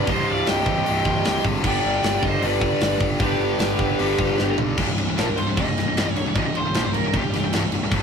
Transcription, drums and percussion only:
0.07 kick loud
0.07 open hi-hat medium
0.46 snare loud
0.46 open hi-hat medium
0.66 kick medium
0.86 open hi-hat medium
1.05 kick medium
1.25 snare loud
1.25 open hi-hat medium
1.45 kick medium
1.64 kick loud
1.64 crash loud
2.03 snare loud
2.03 open hi-hat medium
2.23 kick medium
2.42 open hi-hat medium
2.61 kick loud
2.81 snare loud
2.81 open hi-hat medium
3.00 kick medium
3.20 kick loud
3.20 open hi-hat medium
3.59 snare loud
3.59 open hi-hat medium
3.79 kick medium
3.99 open hi-hat medium
4.19 kick loud
4.38 snare medium
4.58 floor tom loud
4.78 kick loud
4.78 crash loud
4.78 crash medium
4.98 crash medium
5.18 snare loud
5.18 crash medium
5.38 crash medium
5.57 kick loud
5.57 crash medium
5.78 snare soft
5.78 crash medium
5.97 snare loud
5.97 crash medium
6.16 crash medium
6.35 kick loud
6.35 crash medium
6.55 crash medium
6.74 snare loud
6.74 crash medium
6.94 crash medium
7.14 kick loud
7.14 crash medium
7.34 snare soft
7.34 crash medium
7.53 snare loud
7.53 crash medium
7.72 crash medium
7.92 kick loud
7.92 crash medium

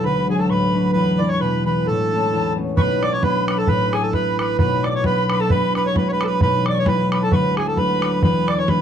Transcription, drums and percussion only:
2.77 bodhran medium
3.03 bodhran medium
3.23 bodhran medium
3.48 bodhran medium
3.67 bodhran medium
3.93 bodhran medium
4.13 bodhran medium
4.39 bodhran medium
4.59 bodhran medium
4.84 bodhran medium
5.04 bodhran medium
5.30 bodhran medium
5.50 bodhran medium
5.75 bodhran soft
5.96 bodhran medium
6.21 bodhran medium
6.41 bodhran medium
6.66 bodhran medium
6.86 bodhran medium
7.12 bodhran medium
7.32 bodhran medium
7.57 bodhran medium
7.77 bodhran medium
8.02 bodhran medium
8.23 bodhran medium
8.48 bodhran medium
8.68 bodhran medium

